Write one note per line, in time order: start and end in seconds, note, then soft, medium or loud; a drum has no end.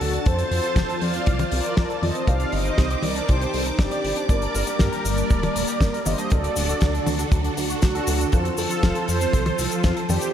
0.00 0.19 D2 medium
0.00 0.24 D3 medium
0.00 0.11 F#3 medium
0.00 0.24 D4 medium
0.00 0.23 D4 medium
0.00 0.23 F#4 medium
0.00 0.24 F#4 medium
0.00 0.23 F#4 medium
0.00 0.26 A4 loud
0.00 0.23 A4 medium
0.00 0.23 F#5 medium
0.00 2.24 A5 medium
0.00 open hi-hat loud
0.13 0.25 D4 loud
0.13 closed hi-hat medium
0.26 0.44 F2 loud
0.26 2.26 F3 medium
0.26 0.36 F3 medium
0.26 1.99 C4 medium
0.26 1.99 F4 medium
0.26 2.26 F4 medium
0.26 0.50 A4 medium
0.26 0.50 C5 loud
0.26 2.26 C5 medium
0.26 1.99 C5 loud
0.26 1.99 A5 medium
0.26 kick loud
0.26 closed hi-hat medium
0.39 0.45 C4 medium
0.39 closed hi-hat medium
0.51 0.60 F2 loud
0.51 0.57 F3 medium
0.51 0.99 A4 medium
0.51 1.03 C5 loud
0.51 open hi-hat loud
0.63 0.76 F4 medium
0.63 closed hi-hat medium
0.76 0.85 F1 loud
0.76 0.87 F3 medium
0.76 kick loud
0.76 snare loud
0.76 closed hi-hat medium
0.76 high tom medium
0.89 0.95 A4 loud
0.89 closed hi-hat medium
1.01 1.20 F2 medium
1.01 1.12 F3 medium
1.01 1.49 D5 medium
1.01 1.53 F5 loud
1.01 open hi-hat loud
1.14 1.26 C4 loud
1.14 closed hi-hat medium
1.26 1.45 C2 medium
1.26 1.37 F3 medium
1.26 kick loud
1.26 closed hi-hat medium
1.39 1.46 C4 medium
1.39 closed hi-hat medium
1.39 high tom medium
1.52 1.61 C2 medium
1.52 1.58 F3 medium
1.52 1.99 A#4 medium
1.52 2.04 D5 loud
1.52 open hi-hat loud
1.64 1.77 F4 medium
1.64 closed hi-hat medium
1.77 1.86 F2 loud
1.77 1.88 F3 medium
1.77 kick loud
1.77 snare loud
1.77 closed hi-hat medium
1.90 1.96 A4 loud
1.90 closed hi-hat medium
2.02 2.11 F2 loud
2.02 2.13 F3 medium
2.02 2.25 C4 medium
2.02 2.25 F4 medium
2.02 2.25 A4 medium
2.02 2.26 C5 medium
2.02 2.25 D5 medium
2.02 2.28 D#5 loud
2.02 open hi-hat medium
2.02 high tom medium
2.15 2.27 C4 loud
2.15 closed hi-hat medium
2.27 2.45 C2 medium
2.27 4.27 D#3 medium
2.27 2.38 G3 medium
2.27 3.76 C4 medium
2.27 4.27 C4 medium
2.27 3.76 D#4 medium
2.27 3.76 G4 medium
2.27 3.76 C5 loud
2.27 2.52 D5 medium
2.27 2.54 F5 loud
2.27 6.27 D6 medium
2.27 kick loud
2.27 closed hi-hat medium
2.40 2.46 D4 medium
2.40 closed hi-hat medium
2.52 2.71 G1 medium
2.52 2.59 G3 medium
2.52 3.00 C5 medium
2.52 3.05 D#5 loud
2.52 open hi-hat loud
2.65 2.77 D#4 medium
2.65 closed hi-hat medium
2.78 2.96 C2 loud
2.78 2.88 G3 medium
2.78 kick loud
2.78 snare loud
2.78 closed hi-hat medium
2.90 2.97 G4 loud
2.90 closed hi-hat medium
3.02 3.21 C2 medium
3.02 3.14 G3 medium
3.02 3.27 A#4 medium
3.02 3.29 D5 loud
3.02 open hi-hat loud
3.02 high tom medium
3.16 3.28 D4 loud
3.16 closed hi-hat medium
3.28 3.47 C2 loud
3.28 3.39 G3 medium
3.28 3.52 G4 medium
3.28 3.52 C5 loud
3.28 kick loud
3.28 closed hi-hat medium
3.41 3.47 D4 medium
3.41 closed hi-hat medium
3.53 3.72 C2 loud
3.53 3.60 G3 medium
3.53 3.66 A4 medium
3.53 3.65 C5 loud
3.53 open hi-hat loud
3.66 3.78 D#4 medium
3.66 closed hi-hat medium
3.79 3.88 G1 loud
3.79 3.89 G3 medium
3.79 4.26 D4 loud
3.79 4.26 D#4 medium
3.79 4.26 G4 medium
3.79 4.26 D5 loud
3.79 kick loud
3.79 snare loud
3.79 closed hi-hat medium
3.91 3.98 G4 loud
3.91 closed hi-hat medium
4.04 4.13 G1 loud
4.04 4.15 G3 medium
4.04 open hi-hat loud
4.16 4.29 D4 loud
4.16 closed hi-hat medium
4.29 4.47 G1 loud
4.29 4.40 G3 medium
4.29 6.29 G3 medium
4.29 6.29 A#3 medium
4.29 6.03 D4 medium
4.29 6.03 G4 medium
4.29 6.03 A#4 medium
4.29 4.77 A#4 medium
4.29 4.81 D5 loud
4.29 6.03 D5 loud
4.29 kick loud
4.29 closed hi-hat medium
4.29 cabasa soft
4.42 4.48 D4 medium
4.42 closed hi-hat medium
4.54 4.64 G1 loud
4.54 4.61 G3 medium
4.54 open hi-hat loud
4.54 cabasa medium
4.67 4.79 G4 medium
4.67 closed hi-hat soft
4.67 cabasa medium
4.79 4.89 G2 loud
4.79 4.90 G3 medium
4.79 5.04 G4 medium
4.79 5.05 A#4 loud
4.79 kick loud
4.79 snare loud
4.79 closed hi-hat medium
4.79 high tom medium
4.79 cabasa soft
4.92 4.99 A#4 loud
4.92 closed hi-hat medium
5.05 5.23 G1 medium
5.05 5.15 G3 medium
5.05 6.02 A#4 medium
5.05 6.09 D5 loud
5.05 open hi-hat loud
5.05 cabasa medium
5.17 5.29 D4 loud
5.17 closed hi-hat medium
5.17 cabasa medium
5.30 5.48 D1 medium
5.30 5.41 G3 medium
5.30 kick loud
5.30 closed hi-hat medium
5.30 cabasa soft
5.43 5.49 D4 medium
5.43 closed hi-hat medium
5.43 high tom medium
5.55 5.64 D1 medium
5.55 5.62 G3 medium
5.55 open hi-hat loud
5.55 cabasa medium
5.67 5.80 G4 medium
5.67 closed hi-hat medium
5.67 cabasa medium
5.81 5.90 G1 loud
5.81 5.91 G3 medium
5.81 kick loud
5.81 snare loud
5.81 closed hi-hat medium
5.81 cabasa medium
5.93 6.00 A#4 loud
5.93 closed hi-hat medium
6.06 6.15 G1 loud
6.06 6.16 G3 medium
6.06 6.28 D4 medium
6.06 6.28 G4 medium
6.06 6.28 A#4 medium
6.06 6.30 C5 medium
6.06 6.32 D#5 loud
6.06 6.28 F5 medium
6.06 open hi-hat loud
6.06 high tom medium
6.06 cabasa medium
6.18 6.30 D4 loud
6.18 closed hi-hat medium
6.18 cabasa medium
6.30 6.49 D1 medium
6.30 8.31 D3 medium
6.30 6.41 F#3 medium
6.30 8.05 D4 medium
6.30 8.31 D4 medium
6.30 8.05 F#4 medium
6.30 8.31 F#4 medium
6.30 10.30 A4 medium
6.30 8.05 A4 medium
6.30 7.28 A4 medium
6.30 7.28 D5 loud
6.30 8.05 D5 loud
6.30 kick loud
6.30 closed hi-hat medium
6.30 cabasa soft
6.44 6.50 D4 medium
6.44 closed hi-hat medium
6.56 6.74 D1 medium
6.56 6.62 F#3 medium
6.56 open hi-hat loud
6.56 cabasa medium
6.69 6.81 F#4 medium
6.69 closed hi-hat medium
6.69 cabasa medium
6.81 7.00 D2 loud
6.81 6.92 F#3 medium
6.81 kick loud
6.81 snare loud
6.81 closed hi-hat medium
6.81 cabasa soft
6.94 7.00 A4 loud
6.94 closed hi-hat medium
7.06 7.25 D2 medium
7.06 7.17 F#3 medium
7.06 open hi-hat medium
7.06 high tom medium
7.06 cabasa medium
7.19 7.31 D4 loud
7.19 closed hi-hat medium
7.19 cabasa medium
7.32 7.50 D2 loud
7.32 7.42 F#3 medium
7.32 kick loud
7.32 closed hi-hat medium
7.32 cabasa medium
7.44 7.51 D4 medium
7.44 closed hi-hat medium
7.57 7.75 D2 loud
7.57 7.63 F#3 medium
7.57 open hi-hat loud
7.57 cabasa medium
7.70 7.82 F#4 medium
7.70 closed hi-hat medium
7.70 cabasa medium
7.82 8.00 D2 medium
7.82 7.93 F#3 medium
7.82 8.30 D4 medium
7.82 8.34 F#4 loud
7.82 kick loud
7.82 snare loud
7.82 closed hi-hat medium
7.82 cabasa medium
7.95 8.01 A4 loud
7.95 closed hi-hat medium
8.07 8.25 D2 medium
8.07 8.18 F#3 medium
8.07 8.30 D4 medium
8.07 8.30 F#4 medium
8.07 8.30 A4 medium
8.07 8.30 F#5 medium
8.07 open hi-hat loud
8.07 cabasa medium
8.20 8.32 D4 loud
8.20 closed hi-hat medium
8.20 cabasa medium
8.32 8.51 F2 loud
8.32 10.32 F3 medium
8.32 8.43 F3 medium
8.32 10.06 C4 medium
8.32 10.32 F4 medium
8.32 10.06 F4 medium
8.32 8.45 F4 medium
8.32 10.06 A4 medium
8.32 8.44 A4 loud
8.32 10.06 C5 loud
8.32 10.32 C5 medium
8.32 kick loud
8.32 closed hi-hat medium
8.32 cabasa medium
8.45 8.52 C4 medium
8.45 closed hi-hat medium
8.57 8.67 F2 loud
8.57 8.64 F3 medium
8.57 9.05 F4 medium
8.57 9.08 A4 loud
8.57 open hi-hat loud
8.57 cabasa medium
8.70 8.83 F4 medium
8.70 closed hi-hat medium
8.70 cabasa medium
8.83 8.92 F1 loud
8.83 8.94 F3 medium
8.83 kick loud
8.83 snare loud
8.83 closed hi-hat medium
8.83 high tom medium
8.83 cabasa soft
8.95 9.02 A4 loud
8.95 closed hi-hat medium
9.08 9.26 F2 medium
9.08 9.19 F3 medium
9.08 9.56 A4 medium
9.08 9.60 C5 loud
9.08 open hi-hat loud
9.08 cabasa medium
9.21 9.33 C4 loud
9.21 closed hi-hat medium
9.21 cabasa medium
9.33 9.51 C2 medium
9.33 9.44 F3 medium
9.33 kick loud
9.33 closed hi-hat medium
9.33 cabasa medium
9.46 9.52 C4 medium
9.46 closed hi-hat medium
9.46 high tom medium
9.58 9.68 C2 medium
9.58 9.65 F3 medium
9.58 9.83 F4 medium
9.58 9.85 A4 loud
9.58 open hi-hat loud
9.58 cabasa medium
9.71 9.83 F4 medium
9.71 closed hi-hat medium
9.71 cabasa medium
9.84 9.93 F2 loud
9.84 9.94 F3 medium
9.84 9.96 C4 medium
9.84 9.95 F4 medium
9.84 kick loud
9.84 snare loud
9.84 closed hi-hat medium
9.84 cabasa soft
9.96 10.03 A4 loud
9.96 closed hi-hat medium
10.09 10.18 F2 loud
10.09 10.20 F3 medium
10.09 10.31 C4 medium
10.09 10.33 D#4 medium
10.09 10.31 F4 medium
10.09 10.33 G4 loud
10.09 10.31 A4 medium
10.09 10.31 D5 medium
10.09 open hi-hat loud
10.09 high tom medium
10.09 cabasa medium
10.21 10.33 C4 loud
10.21 closed hi-hat medium
10.21 cabasa medium